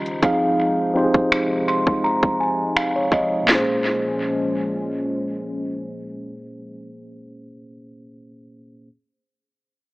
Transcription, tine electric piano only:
0.00 0.24 D#3 medium
0.00 0.24 C#4 medium
0.00 0.24 F4 medium
0.00 0.24 G4 medium
0.00 0.24 D#5 medium
0.22 0.90 F3 medium
0.22 0.90 C4 medium
0.22 0.91 D#4 medium
0.22 0.91 G#4 medium
0.22 0.91 F5 loud
0.94 2.30 F3 medium
0.94 2.30 C4 medium
0.94 2.31 D#4 medium
0.94 1.03 G4 medium
0.94 2.31 C5 medium
1.03 2.34 G#4 medium
1.68 2.01 C6 medium
2.04 2.37 A#5 medium
2.40 2.73 G#5 medium
2.76 2.94 F5 medium
2.96 3.11 C#5 medium
3.12 3.46 D#5 medium
3.42 7.45 A#2 medium
3.42 7.48 A#3 medium
3.49 7.51 C#4 medium
3.49 7.54 G#4 medium
3.55 7.57 C5 medium

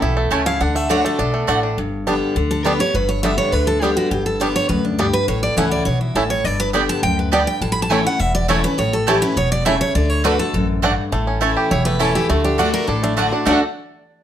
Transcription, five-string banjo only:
0.00 0.15 A3 medium
0.00 0.43 E4 medium
0.00 0.14 G4 medium
0.17 0.58 A3 medium
0.32 0.61 C#4 medium
0.46 0.61 E4 medium
0.61 0.89 D4 medium
0.75 1.03 A3 medium
0.90 1.18 D4 medium
1.05 1.33 A3 medium
1.19 1.47 D4 medium
1.34 1.75 A3 medium
1.48 1.62 D4 medium
1.63 1.78 D4 medium
2.07 2.13 G3 medium
2.07 2.14 B3 medium
2.07 2.14 D4 medium
2.65 2.72 G3 medium
2.65 2.72 B3 medium
2.65 2.72 D4 medium
3.24 3.30 G3 medium
3.24 3.31 B3 medium
3.24 3.31 D4 medium
3.82 3.89 G3 medium
3.82 3.89 B3 medium
3.82 3.89 D4 medium
4.41 4.47 G3 medium
4.41 4.47 B3 medium
4.41 4.48 D4 medium
4.99 5.06 G3 medium
4.99 5.06 B3 medium
4.99 5.06 D4 medium
5.58 5.64 A3 medium
5.58 5.64 C#4 medium
5.58 5.64 E4 medium
6.16 6.22 A3 medium
6.16 6.23 C#4 medium
6.16 6.23 E4 medium
6.75 6.81 G3 medium
6.75 6.81 B3 medium
6.75 6.81 D4 medium
7.33 7.39 G3 medium
7.33 7.39 B3 medium
7.33 7.39 D4 medium
7.92 7.98 A3 medium
7.92 7.98 C#4 medium
7.92 7.98 E4 medium
8.50 8.56 A3 medium
8.50 8.56 C#4 medium
8.50 8.56 E4 medium
9.08 9.14 A3 medium
9.08 9.15 C#4 medium
9.08 9.15 E4 medium
9.67 9.73 A3 medium
9.67 9.73 C#4 medium
9.67 9.73 E4 medium
10.25 10.32 A3 medium
10.25 10.32 D4 medium
10.84 10.90 A3 medium
10.84 10.90 D4 medium
11.12 11.60 A3 medium
11.27 11.68 C#4 medium
11.42 11.70 E4 medium
11.57 11.97 G4 medium
11.71 12.12 E4 medium
11.86 12.29 A3 medium
12.01 12.30 C#4 medium
12.15 12.30 E4 medium
12.30 12.71 A3 medium
12.45 12.58 D4 medium
12.59 12.73 D4 medium
12.74 12.87 D4 medium
12.89 13.17 D4 medium
13.03 13.44 A3 medium
13.18 13.31 D4 medium
13.32 13.47 D4 medium
13.47 13.60 A3 medium
13.47 13.61 D4 medium
13.51 13.62 F#4 medium
13.51 13.63 A4 medium

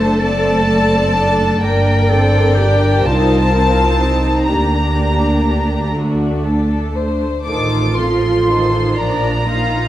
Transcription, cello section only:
0.00 1.65 A4 medium
1.64 2.10 A#4 medium
2.11 2.58 A4 medium
2.58 3.05 G4 medium
3.04 3.52 F4 medium
3.52 3.98 D#4 soft
3.99 4.47 D#4 soft
4.47 6.70 D4 soft
7.47 8.94 F4 soft
8.98 9.47 D4 soft
9.46 9.88 D#4 soft

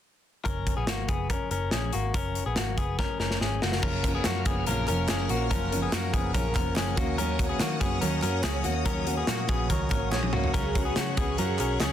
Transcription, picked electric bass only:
0.46 0.72 F#1 medium
0.77 0.88 A#1 medium
0.88 1.06 G#1 medium
1.09 1.36 F#1 medium
1.51 1.69 F#1 medium
1.72 1.90 A#1 medium
1.94 2.11 G#1 medium
2.14 2.41 F#1 medium
2.46 2.55 A#1 medium
2.57 2.74 G#1 medium
2.78 3.04 F#1 medium
3.20 3.38 F#1 medium
3.41 3.59 G#1 medium
3.62 3.80 F#1 medium
3.83 4.18 F#1 medium
4.25 4.43 F#2 medium
4.46 4.64 F#1 medium
4.67 4.85 A#1 medium
4.88 5.06 F1 medium
5.09 5.26 F#1 medium
5.30 5.48 A#1 medium
5.92 6.10 F#2 medium
6.13 6.31 F#1 medium
6.34 6.52 A#1 loud
6.56 6.74 F1 medium
6.76 6.94 F#1 medium
6.97 7.51 D#2 medium
7.60 7.78 D#3 medium
7.81 7.99 F#2 medium
8.02 8.20 D#2 loud
8.23 8.41 F#2 medium
8.44 8.62 C#2 medium
8.65 8.83 D#2 medium
8.86 9.22 D#2 loud
9.28 9.46 A#2 medium
9.49 9.70 A#1 medium
9.70 9.88 C#2 medium
9.91 10.12 G#1 medium
10.12 10.30 A#1 medium
10.33 10.51 C#2 medium
10.54 10.90 C#2 medium
10.97 11.14 C#3 medium
11.18 11.35 C#2 loud
11.39 11.56 F#2 medium
11.60 11.77 B1 medium
11.80 11.92 C#2 medium

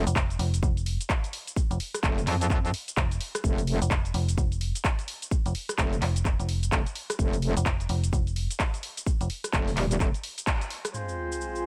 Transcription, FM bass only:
0.07 0.38 F1 loud
0.39 0.61 F1 loud
0.63 0.98 F1 loud
1.71 1.78 F1 loud
2.97 3.19 F1 loud
3.82 4.13 F1 loud
4.14 4.36 F1 loud
4.38 4.73 F1 loud
5.46 5.53 F1 loud
6.02 6.37 F1 loud
6.40 6.71 F1 loud
7.57 7.88 F1 loud
7.89 8.11 F1 loud
8.13 8.48 F1 loud
9.21 9.28 F1 loud

